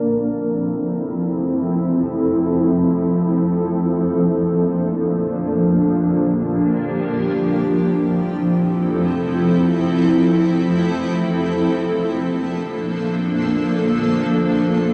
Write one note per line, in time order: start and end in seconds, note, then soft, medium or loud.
0.00 7.48 F3 medium
0.00 3.51 C4 medium
0.00 3.51 E4 medium
0.00 5.50 A4 medium
3.55 7.48 A#3 medium
3.55 7.48 D4 medium
5.53 7.50 G4 medium
7.52 11.45 F3 medium
7.52 11.45 C4 medium
7.52 11.45 E4 medium
7.52 11.45 A4 medium
11.49 14.94 F3 medium
11.49 14.94 A#3 medium
11.49 14.94 D4 medium
11.49 14.94 A4 medium